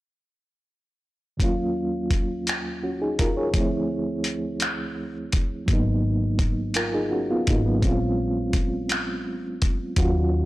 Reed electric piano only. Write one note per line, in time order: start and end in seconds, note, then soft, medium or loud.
1.37 3.49 D#2 medium
1.37 3.49 F#3 soft
1.37 3.50 A#3 soft
1.42 2.81 C#4 medium
1.42 2.82 F4 medium
2.83 3.00 C#4 soft
2.83 3.00 F#4 soft
3.02 3.18 D#4 soft
3.02 3.18 G#4 soft
3.19 3.36 F4 soft
3.19 3.36 A#4 medium
3.37 3.71 G#4 soft
3.37 3.70 C#5 soft
3.51 5.63 D2 medium
3.51 5.64 F3 soft
3.51 5.64 A3 medium
3.57 5.65 C4 soft
3.57 5.66 E4 medium
5.66 6.72 F#3 medium
5.66 6.73 A#3 medium
5.70 6.74 B3 medium
5.70 6.75 D#4 medium
6.76 6.93 F4 soft
6.76 6.93 A#4 medium
6.94 7.11 D#4 soft
6.94 7.10 G#4 medium
7.11 7.29 C#4 soft
7.11 7.28 F#4 medium
7.31 7.47 B3 soft
7.31 7.47 F4 medium
7.48 7.65 A#3 soft
7.48 7.64 D#4 medium
7.66 7.99 F#3 soft
7.66 7.99 B3 soft
7.80 9.91 G#3 medium
7.80 9.92 C4 medium
7.84 9.94 C#4 medium
7.84 9.95 F4 medium
9.98 10.45 F#3 soft
9.98 10.45 C#4 soft
9.98 10.45 F4 soft
9.98 10.45 F#4 medium